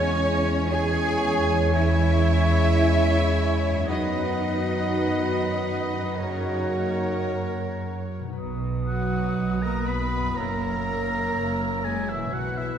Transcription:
Already playing: harp E2 G#3 C#4 G#4, double bass section E2, trombone section C#3 G#3, french horn section C#4 E4, cello section C#4, flute C#5, trumpet C#5, viola section C#5 G#5, violin section C#5, clarinet C#5, oboe G#5
0.69 trombone section C#3 G#3, french horn section C#4 E4, cello section G#4, trumpet C#5, viola section C#5 G#5, violin section G#5, flute G#5
1.72 trombone section C#3 G#3, french horn section C#4 E4, cello section E4, trumpet C#5, viola section C#5 G#5, violin section E5, flute E5
3.70 harp F#2
3.74 harp F#3
3.79 harp B3
3.83 harp B4
3.87 double bass section F#2, trombone section D#3 F#3, french horn section B3 F#4, cello section D#4, clarinet B4, viola section B4 D#5, violin section D#5, flute D#5, trumpet F#5, oboe B5
5.98 harp F#2
6.03 harp F#3
6.07 harp C#4
6.12 trombone section F#3, harp A#4
6.16 trombone section C#3, french horn section A#3 F#4, viola section A#4 C#5, clarinet C#5, trumpet F#5, oboe A#5
8.19 harp B2
8.24 harp F#3
8.28 harp D#4
8.33 harp B4
8.37 double bass section B1, cello section B2, clarinet B4, flute D#6
8.87 french horn section F#3, violin section D#4 F#5, viola section F#4, oboe F#5
9.38 double bass section B1, cello section B2
9.62 french horn section A#3, viola section A#4, oboe A#5, violin section A#5
9.87 french horn section B3, violin section D#4 B5, viola section B4, oboe B5
10.19 harp F#2
10.24 harp F#3
10.28 harp E4
10.33 french horn section A#3, harp C#5, clarinet C#5
10.37 double bass section F#1, cello section F#2, violin section E4 A#5, viola section A#4, oboe A#5, flute E6
10.87 violin section E4
11.35 double bass section F#1, cello section F#2
11.84 french horn section G#3, violin section E4 G#5, viola section G#4, oboe G#5
12.09 french horn section E3, viola section E4, violin section E5, oboe E5
12.15 harp B2
12.19 harp F#3
12.24 harp F#4
12.28 harp B4
12.32 double bass section B1, cello section B2, french horn section F#3, viola section F#4, clarinet B4, violin section F#5, oboe F#5, flute F#6
12.56 french horn section E3, viola section E4, violin section E5, oboe E5

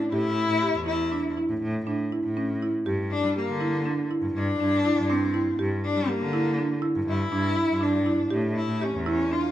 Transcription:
0.11 cello A2 E4, marimba G4
0.49 cello A2
0.62 marimba G4
0.74 cello E2
0.86 marimba E4, cello E4
1.12 marimba D4
1.37 marimba E4
1.49 cello A2
1.62 cello A2
1.86 cello A2, marimba D4
2.12 marimba E4
2.23 cello A2
2.37 marimba C#4
2.63 marimba E4
2.86 cello G2, marimba G4
3.11 cello D4
3.23 cello G3
3.36 cello A#3, marimba G4
3.47 cello D3
3.61 marimba E4
3.86 marimba D4
4.11 marimba E4
4.22 cello G2
4.34 cello G2 D4
4.59 cello G2, marimba D4
4.85 marimba E4
4.97 cello G2
5.10 cello C4, marimba D4
5.34 marimba E4
5.58 cello G2, marimba G4
5.85 cello D4
5.95 cello G3
6.08 cello A#3, marimba G4
6.20 cello D3
6.33 marimba E4
6.59 marimba D4
6.82 marimba E4
6.95 cello G2
7.07 cello G2 E4
7.32 cello G2, marimba D4
7.56 marimba E4
7.69 cello G2
7.81 marimba D4, cello D4
8.06 marimba E4
8.31 cello A2, marimba G4
8.56 cello E4
8.68 cello A2
8.82 cello C#4, marimba G4
8.93 cello E2
9.06 cello C#4, marimba E4
9.31 marimba D4, cello F4

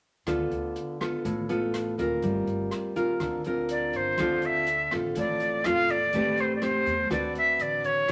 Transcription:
0.26 upright bass D2, nylon-string guitar D3 B3 F4 A4, kick, cross-stick, closed hi-hat
0.50 upright bass D2, closed hi-hat
0.76 closed hi-hat
1.00 nylon-string guitar B3 F4 A4, kick, cross-stick, closed hi-hat
1.25 upright bass A1, nylon-string guitar A2, kick, closed hi-hat
1.49 nylon-string guitar B3 F4 A4, closed hi-hat
1.74 cross-stick, closed hi-hat
1.98 upright bass D2, nylon-string guitar C4 F4 A#4, kick, closed hi-hat
2.22 upright bass G1, nylon-string guitar G3, kick, closed hi-hat
2.46 upright bass G1, closed hi-hat
2.71 cross-stick, closed hi-hat
2.96 nylon-string guitar C4 F4 A#4, kick, closed hi-hat
3.20 upright bass D2, nylon-string guitar D3, kick, cross-stick, closed hi-hat
3.44 nylon-string guitar C4 F4 A#4, closed hi-hat
3.69 flute D5, closed hi-hat
3.93 upright bass G1, flute C5, kick, closed hi-hat
4.18 upright bass D2, nylon-string guitar D3 C4 F4 A4, kick, cross-stick, closed hi-hat
4.42 flute E5, closed hi-hat
4.67 closed hi-hat
4.91 upright bass A1, nylon-string guitar C4 F4 A4, kick, cross-stick, closed hi-hat
5.15 upright bass A1, nylon-string guitar A2, flute D5, kick, closed hi-hat
5.40 closed hi-hat
5.64 upright bass E2, nylon-string guitar C4 F4 A4, flute F5, cross-stick, closed hi-hat
5.88 flute D5, kick, closed hi-hat
6.13 upright bass A1, nylon-string guitar A3 C4 G4 B4, kick, closed hi-hat
6.37 flute C5, closed hi-hat
6.56 flute D5
6.62 nylon-string guitar C4 G4, flute C5, cross-stick, closed hi-hat
6.86 upright bass E2, kick, closed hi-hat
7.10 upright bass D2, nylon-string guitar D3 C4 F#4 B4, flute D5, kick, cross-stick, closed hi-hat
7.35 flute E5, closed hi-hat
7.59 upright bass A1, flute D5, closed hi-hat
7.84 flute C#5, kick, closed hi-hat
8.08 upright bass G1, nylon-string guitar G3 B3 F#4, kick, cross-stick, closed hi-hat

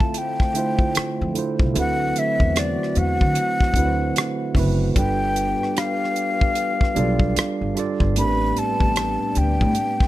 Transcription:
Already playing: tine electric piano D3 A3 E4 F4 C5, trombone section A3 C4 F4, flute A5
0.00 kick
0.14 flute G5, closed hi-hat
0.40 kick, cross-stick
0.54 tine electric piano D3 A3 E4 F4, closed hi-hat
0.59 tine electric piano C5
0.79 kick
0.95 muted upright bass stroke, cross-stick, closed hi-hat
1.21 upright bass F2
1.34 tine electric piano D3 A3 E4 F4, closed hi-hat
1.39 tine electric piano C5
1.59 upright bass C2, kick
1.74 upright bass D2, tine electric piano D3 A3 C4 E4 F#4, trombone section F#3 C4 F#4, closed hi-hat
1.79 tine electric piano B4, flute F#5
2.16 flute E5, closed hi-hat
2.40 upright bass E2, kick
2.56 flute D5, cross-stick, closed hi-hat
2.83 cross-stick
2.95 upright bass E2, flute F#5, closed hi-hat
3.21 upright bass D3, kick
3.35 closed hi-hat
3.60 kick, cross-stick
3.74 upright bass D2, tine electric piano D3 A3 C4 E4 F#4, kick, closed hi-hat
3.79 tine electric piano B4
3.85 tine electric piano C5
4.16 cross-stick, closed hi-hat
4.55 upright bass F#1, tine electric piano D3 A3 C4 E4 F#4, kick, cross-stick, open hi-hat
4.59 tine electric piano B4
4.95 upright bass G1, tine electric piano G3 D4 F4 A4, trombone section B3 D4 G4, flute G5, kick, closed hi-hat
4.99 tine electric piano B4
5.36 closed hi-hat
5.63 cross-stick
5.77 flute F5, cross-stick, closed hi-hat
6.04 cross-stick
6.16 closed hi-hat
6.41 kick
6.55 closed hi-hat
6.81 kick, cross-stick
6.95 upright bass B1, tine electric piano G3 D4 F4 A4, closed hi-hat
7.00 tine electric piano D5
7.20 kick
7.36 muted upright bass stroke, cross-stick, closed hi-hat
7.61 upright bass G1
7.75 tine electric piano G3 D4 F4 A4, cross-stick, closed hi-hat
7.79 tine electric piano D5
8.00 upright bass G1, kick
8.15 upright bass A1, tine electric piano A2 A3 C4 D4 G4, trombone section G3 B3 D4, flute B5, closed hi-hat
8.20 tine electric piano A#4
8.27 tine electric piano B4
8.57 flute A5, closed hi-hat
8.80 upright bass A1, kick
8.96 cross-stick, closed hi-hat
9.35 upright bass D2, flute G5, closed hi-hat
9.61 upright bass A2, kick
9.75 closed hi-hat
10.00 kick, cross-stick

